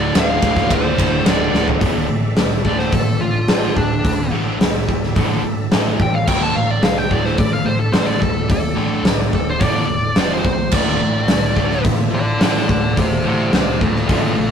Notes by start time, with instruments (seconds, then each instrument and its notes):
Already playing: fingered electric bass D1, overdriven electric guitar D2 A2 D3, tonewheel organ D4 A4 F5, lead electric guitar D5
0.14 fingered electric bass D1, overdriven electric guitar D2 A2 D3, snare, ride
0.19 lead electric guitar F5
0.42 fingered electric bass D1, overdriven electric guitar D2 A2 D3, kick, ride
0.57 kick, snare
0.70 fingered electric bass D1, overdriven electric guitar D2 A2 D3, kick, ride
0.75 lead electric guitar C5
0.97 fingered electric bass D1, overdriven electric guitar D2 A2 D3, kick, ride
1.24 fingered electric bass D1, overdriven electric guitar D2 A2 D3, snare, ride
1.30 lead electric guitar D5
1.52 fingered electric bass D1, overdriven electric guitar D2 A2 D3, snare
1.68 floor tom
1.80 fingered electric bass D1, overdriven electric guitar D2 A2 D3, tonewheel organ D4 A4 E5, kick, open hi-hat
2.09 fingered electric bass A1, overdriven electric guitar D2 A2
2.36 fingered electric bass C2, overdriven electric guitar D2 A2, snare, open hi-hat
2.65 fingered electric bass D1, overdriven electric guitar D2 A2 D3, lead electric guitar D5, kick
2.79 lead electric guitar C5, snare
2.92 fingered electric bass A1, overdriven electric guitar D2 A2, lead electric guitar A4, kick, open hi-hat
3.20 fingered electric bass A1, overdriven electric guitar D2 A2, lead electric guitar F4
3.47 fingered electric bass A1, overdriven electric guitar D2 A2 D3, snare, open hi-hat
3.77 fingered electric bass D1, overdriven electric guitar D2 A2, lead electric guitar D4, kick
4.04 fingered electric bass D1, overdriven electric guitar D2 A2, kick, open hi-hat
4.31 fingered electric bass A1, overdriven electric guitar D2 A2 D3
4.60 fingered electric bass C2, overdriven electric guitar D2 A2, snare, open hi-hat
4.88 fingered electric bass D1, overdriven electric guitar D2 A2, kick
5.03 snare
5.16 fingered electric bass A1, overdriven electric guitar D2 A2 D3, kick, open hi-hat
5.43 fingered electric bass G#1, overdriven electric guitar D2 A2
5.71 fingered electric bass A1, overdriven electric guitar A2 E3 A3, tonewheel organ A3 E4, snare, open hi-hat
6.00 fingered electric bass A1, overdriven electric guitar A2 E3, lead electric guitar G5, kick
6.14 lead electric guitar F5
6.26 fingered electric bass D1, overdriven electric guitar D2 A2 D3, tonewheel organ D4 A4 E5, lead electric guitar G5, kick, crash
6.43 lead electric guitar A5
6.55 fingered electric bass A1, overdriven electric guitar D2 A2, lead electric guitar F5
6.71 lead electric guitar D5
6.82 fingered electric bass C2, overdriven electric guitar D2 A2, lead electric guitar F5, snare, open hi-hat
6.98 lead electric guitar G5
7.09 fingered electric bass D1, overdriven electric guitar D2 A2 D3, lead electric guitar D5, kick
7.25 lead electric guitar C5, snare
7.37 fingered electric bass A1, overdriven electric guitar D2 A2, lead electric guitar D5, kick, open hi-hat
7.53 lead electric guitar F5
7.65 fingered electric bass A1, overdriven electric guitar D2 A2, lead electric guitar C5
7.80 lead electric guitar A4
7.92 fingered electric bass A1, overdriven electric guitar D2 A2 D3, lead electric guitar C5, snare, open hi-hat
8.06 lead electric guitar D5
8.20 fingered electric bass D1, overdriven electric guitar D2 A2, lead electric guitar A4, kick
8.48 fingered electric bass D1, overdriven electric guitar D2 A2, lead electric guitar A4, tonewheel organ D5, kick, open hi-hat
8.75 fingered electric bass A1, overdriven electric guitar D2 A2 D3
9.03 fingered electric bass C2, overdriven electric guitar D2 A2, snare, open hi-hat
9.31 fingered electric bass D1, overdriven electric guitar D2 A2, lead electric guitar A4, kick
9.50 lead electric guitar C5
9.59 fingered electric bass A1, overdriven electric guitar D2 A2 D3, kick, open hi-hat
9.63 lead electric guitar D5
9.87 fingered electric bass E1, overdriven electric guitar D2 A2
10.16 fingered electric bass F1, overdriven electric guitar F2 C3 F3, tonewheel organ F3 C4 G4, lead electric guitar D5, snare, open hi-hat
10.34 lead electric guitar C5
10.44 fingered electric bass C2, overdriven electric guitar F2 C3, kick
10.71 fingered electric bass D1, overdriven electric guitar D2 A2 D3, distorted electric guitar A3 F4, tonewheel organ D4 A4 E5, lead electric guitar D5, kick, crash
11.00 fingered electric bass A1, overdriven electric guitar D2 A2
11.27 fingered electric bass C2, overdriven electric guitar D2 A2, snare, open hi-hat
11.56 fingered electric bass D1, overdriven electric guitar D2 A2 D3, kick
11.71 snare
11.82 fingered electric bass A1, overdriven electric guitar D2 A2, distorted electric guitar D3, kick, open hi-hat
11.87 distorted electric guitar A3 F4
12.11 fingered electric bass A1, overdriven electric guitar D2 A2, lead electric guitar A4 D5
12.38 fingered electric bass A1, overdriven electric guitar D2 A2 D3, snare, open hi-hat
12.44 lead electric guitar A4 D5
12.68 fingered electric bass D1, overdriven electric guitar D2 A2, lead electric guitar A4 D5, kick
12.97 fingered electric bass D1, overdriven electric guitar D2 A2, distorted electric guitar D3 A3 F4, lead electric guitar G4 C5, tonewheel organ F5, kick, open hi-hat
13.24 fingered electric bass A1, overdriven electric guitar D2 A2 D3
13.28 lead electric guitar G4 C5
13.53 fingered electric bass C2, overdriven electric guitar D2 A2, lead electric guitar G4 C5, snare, open hi-hat
13.79 fingered electric bass D1, overdriven electric guitar D2 A2, lead electric guitar F4 A4, kick
13.96 snare
14.07 fingered electric bass A1, overdriven electric guitar D2 A2 D3, distorted electric guitar A3 F4, kick, open hi-hat
14.11 lead electric guitar F4 A4
14.35 fingered electric bass A#1, overdriven electric guitar D2 A2
14.39 lead electric guitar F4 A4